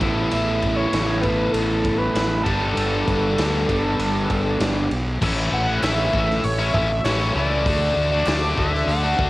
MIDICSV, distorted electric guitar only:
0, 0, Header, 1, 3, 480
1, 0, Start_track
1, 0, Tempo, 611621
1, 253, Time_signature, 4, 2, 24, 8
1, 7298, End_track
2, 0, Start_track
2, 0, Title_t, "Distorted electric guitar"
2, 0, Program_c, 0, 30
2, 0, Note_on_c, 0, 57, 86
2, 10, Note_on_c, 0, 59, 89
2, 17, Note_on_c, 0, 64, 102
2, 21, Note_on_c, 0, 69, 92
2, 1918, Note_off_c, 0, 59, 0
2, 1921, Note_off_c, 0, 57, 0
2, 1921, Note_off_c, 0, 64, 0
2, 1924, Note_on_c, 0, 55, 91
2, 1934, Note_on_c, 0, 59, 91
2, 1938, Note_on_c, 0, 62, 97
2, 1943, Note_off_c, 0, 69, 0
2, 1946, Note_on_c, 0, 67, 101
2, 3833, Note_off_c, 0, 55, 0
2, 3838, Note_off_c, 0, 59, 0
2, 3840, Note_off_c, 0, 62, 0
2, 3844, Note_off_c, 0, 67, 0
2, 4091, Note_on_c, 0, 45, 100
2, 4096, Note_on_c, 0, 52, 94
2, 4100, Note_on_c, 0, 57, 106
2, 4105, Note_on_c, 0, 61, 98
2, 4107, Note_on_c, 0, 64, 102
2, 4446, Note_off_c, 0, 64, 0
2, 4456, Note_on_c, 0, 64, 68
2, 4459, Note_off_c, 0, 61, 0
2, 4468, Note_on_c, 0, 61, 61
2, 4470, Note_off_c, 0, 57, 0
2, 4473, Note_on_c, 0, 57, 58
2, 4565, Note_off_c, 0, 45, 0
2, 4570, Note_off_c, 0, 52, 0
2, 4574, Note_on_c, 0, 45, 92
2, 4580, Note_off_c, 0, 61, 0
2, 4580, Note_on_c, 0, 52, 87
2, 4581, Note_off_c, 0, 57, 0
2, 4581, Note_off_c, 0, 64, 0
2, 4584, Note_on_c, 0, 57, 98
2, 4589, Note_on_c, 0, 61, 86
2, 4590, Note_on_c, 0, 64, 103
2, 4803, Note_off_c, 0, 52, 0
2, 4813, Note_on_c, 0, 52, 82
2, 4815, Note_off_c, 0, 61, 0
2, 4818, Note_off_c, 0, 57, 0
2, 4821, Note_on_c, 0, 57, 79
2, 4822, Note_off_c, 0, 64, 0
2, 4824, Note_on_c, 0, 61, 86
2, 4832, Note_on_c, 0, 64, 82
2, 4923, Note_off_c, 0, 64, 0
2, 4927, Note_off_c, 0, 61, 0
2, 4930, Note_off_c, 0, 52, 0
2, 4935, Note_off_c, 0, 57, 0
2, 5052, Note_off_c, 0, 45, 0
2, 5170, Note_on_c, 0, 64, 75
2, 5179, Note_on_c, 0, 61, 56
2, 5188, Note_on_c, 0, 57, 62
2, 5292, Note_on_c, 0, 52, 76
2, 5293, Note_off_c, 0, 61, 0
2, 5294, Note_off_c, 0, 57, 0
2, 5297, Note_on_c, 0, 57, 74
2, 5299, Note_off_c, 0, 64, 0
2, 5303, Note_on_c, 0, 61, 83
2, 5308, Note_on_c, 0, 64, 81
2, 5412, Note_off_c, 0, 64, 0
2, 5413, Note_off_c, 0, 61, 0
2, 5417, Note_off_c, 0, 52, 0
2, 5420, Note_off_c, 0, 57, 0
2, 5537, Note_on_c, 0, 45, 100
2, 5544, Note_on_c, 0, 52, 99
2, 5547, Note_on_c, 0, 57, 95
2, 5552, Note_on_c, 0, 61, 104
2, 5554, Note_on_c, 0, 64, 101
2, 5642, Note_off_c, 0, 64, 0
2, 5651, Note_off_c, 0, 61, 0
2, 5652, Note_on_c, 0, 64, 75
2, 5661, Note_on_c, 0, 61, 69
2, 5666, Note_off_c, 0, 57, 0
2, 5670, Note_on_c, 0, 57, 60
2, 5771, Note_off_c, 0, 52, 0
2, 5780, Note_on_c, 0, 52, 79
2, 5783, Note_off_c, 0, 61, 0
2, 5784, Note_off_c, 0, 57, 0
2, 5787, Note_on_c, 0, 57, 84
2, 5788, Note_off_c, 0, 64, 0
2, 5793, Note_on_c, 0, 61, 78
2, 5798, Note_on_c, 0, 64, 88
2, 5893, Note_off_c, 0, 45, 0
2, 6000, Note_off_c, 0, 52, 0
2, 6007, Note_off_c, 0, 61, 0
2, 6009, Note_off_c, 0, 64, 0
2, 6011, Note_on_c, 0, 50, 95
2, 6017, Note_off_c, 0, 57, 0
2, 6020, Note_on_c, 0, 57, 96
2, 6026, Note_on_c, 0, 62, 109
2, 6035, Note_on_c, 0, 66, 119
2, 6359, Note_off_c, 0, 66, 0
2, 6369, Note_on_c, 0, 66, 80
2, 6376, Note_off_c, 0, 62, 0
2, 6379, Note_on_c, 0, 62, 60
2, 6386, Note_off_c, 0, 57, 0
2, 6389, Note_on_c, 0, 57, 57
2, 6480, Note_off_c, 0, 50, 0
2, 6490, Note_on_c, 0, 50, 92
2, 6494, Note_off_c, 0, 57, 0
2, 6497, Note_on_c, 0, 57, 94
2, 6498, Note_off_c, 0, 62, 0
2, 6498, Note_off_c, 0, 66, 0
2, 6502, Note_on_c, 0, 62, 104
2, 6508, Note_on_c, 0, 66, 101
2, 6718, Note_off_c, 0, 50, 0
2, 6727, Note_on_c, 0, 50, 79
2, 6731, Note_off_c, 0, 57, 0
2, 6734, Note_on_c, 0, 57, 79
2, 6737, Note_off_c, 0, 62, 0
2, 6738, Note_off_c, 0, 66, 0
2, 6740, Note_on_c, 0, 62, 84
2, 6747, Note_on_c, 0, 66, 82
2, 6843, Note_off_c, 0, 66, 0
2, 6848, Note_off_c, 0, 57, 0
2, 6848, Note_off_c, 0, 62, 0
2, 7085, Note_on_c, 0, 66, 74
2, 7088, Note_off_c, 0, 50, 0
2, 7094, Note_on_c, 0, 62, 72
2, 7104, Note_on_c, 0, 57, 57
2, 7206, Note_off_c, 0, 57, 0
2, 7207, Note_on_c, 0, 50, 81
2, 7212, Note_off_c, 0, 62, 0
2, 7215, Note_on_c, 0, 57, 76
2, 7218, Note_off_c, 0, 66, 0
2, 7222, Note_on_c, 0, 62, 84
2, 7227, Note_on_c, 0, 66, 81
2, 7298, Note_off_c, 0, 50, 0
2, 7298, Note_off_c, 0, 57, 0
2, 7298, Note_off_c, 0, 62, 0
2, 7298, Note_off_c, 0, 66, 0
2, 7298, End_track
3, 0, Start_track
3, 0, Title_t, "Muted distorted electric guitar strokes"
3, 4932, Note_on_c, 9, 29, 57
3, 5011, Note_off_c, 9, 29, 0
3, 5421, Note_on_c, 9, 29, 53
3, 5500, Note_off_c, 9, 29, 0
3, 6853, Note_on_c, 9, 29, 56
3, 6931, Note_off_c, 9, 29, 0
3, 7298, End_track
0, 0, End_of_file